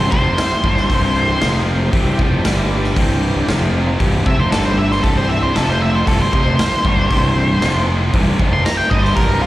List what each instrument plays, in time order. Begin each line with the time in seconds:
Already playing: fingered electric bass C1, overdriven electric guitar C2 G2 C3, tonewheel organ G3 C4 E4 C5
0.00 lead electric guitar C5
0.12 fingered electric bass F1, overdriven electric guitar F2 C3 F3, lead electric guitar C5, kick
0.38 snare, open hi-hat
0.64 fingered electric bass G1, overdriven electric guitar G2 D3 G3, kick
0.77 snare
0.90 fingered electric bass C1, overdriven electric guitar C2 G2 C3, kick, open hi-hat
1.41 fingered electric bass F1, overdriven electric guitar F2 C3 F3, tonewheel organ C4 F4 C5, snare, open hi-hat
1.92 fingered electric bass C1, overdriven electric guitar C2 G2 C3, tonewheel organ G3 C4 E4 C5, kick, open hi-hat
2.19 fingered electric bass F1, overdriven electric guitar F2 C3 F3, kick
2.44 fingered electric bass G1, overdriven electric guitar G2 D3 G3, tonewheel organ G3 D4 G4, snare, open hi-hat
2.84 snare
2.96 fingered electric bass C1, overdriven electric guitar C2 G2 C3, tonewheel organ E3 G3 C4 G4, kick, open hi-hat
3.48 fingered electric bass F1, overdriven electric guitar F2 C3 F3, tonewheel organ F3 C4 F4, snare, open hi-hat
3.99 fingered electric bass C1, overdriven electric guitar C2 G2 C3, tonewheel organ E3 G3 C4 G4, kick, open hi-hat
4.25 fingered electric bass F1, overdriven electric guitar F2 C3 F3, lead electric guitar E5, kick
4.40 lead electric guitar C5
4.51 fingered electric bass G1, overdriven electric guitar G2 D3 G3, tonewheel organ G3 D4 G4, lead electric guitar A4, snare, open hi-hat
4.65 lead electric guitar C5
4.78 lead electric guitar E5
4.91 lead electric guitar C5, snare
5.03 fingered electric bass C1, overdriven electric guitar C2 G2 C3, tonewheel organ G3 C4 E4 C5, lead electric guitar A4, kick, open hi-hat
5.18 lead electric guitar C5
5.29 lead electric guitar E5
5.43 lead electric guitar C5
5.55 fingered electric bass F1, overdriven electric guitar F2 C3 F3, tonewheel organ C4 F4 C5, lead electric guitar A4, snare, open hi-hat
5.70 lead electric guitar C5
5.82 lead electric guitar E5
5.95 lead electric guitar C5
6.07 fingered electric bass C1, overdriven electric guitar C2 G2 C3, tonewheel organ G3 C4 E4 C5, lead electric guitar A4, kick, open hi-hat
6.22 lead electric guitar C5
6.33 fingered electric bass F1, overdriven electric guitar F2 C3 F3, lead electric guitar C5, kick
6.59 snare, open hi-hat
6.85 fingered electric bass G1, overdriven electric guitar G2 D3 G3, kick
7.10 fingered electric bass C1, overdriven electric guitar C2 G2 C3, kick, open hi-hat
7.61 fingered electric bass F1, overdriven electric guitar F2 C3 F3, tonewheel organ C4 F4 C5, snare, open hi-hat
8.13 fingered electric bass C1, overdriven electric guitar C2 G2 C3, tonewheel organ G3 C4 E4 C5, kick, open hi-hat
8.39 fingered electric bass F1, overdriven electric guitar F2 C3 F3, kick
8.53 lead electric guitar C6
8.65 lead electric guitar A#5, snare, open hi-hat
8.77 lead electric guitar G5
8.90 fingered electric bass G1, overdriven electric guitar G2 D3 G3, lead electric guitar D#5, kick
9.04 lead electric guitar C5, snare
9.16 fingered electric bass C1, overdriven electric guitar C2 G2 C3, lead electric guitar A#4, kick, open hi-hat
9.42 lead electric guitar F4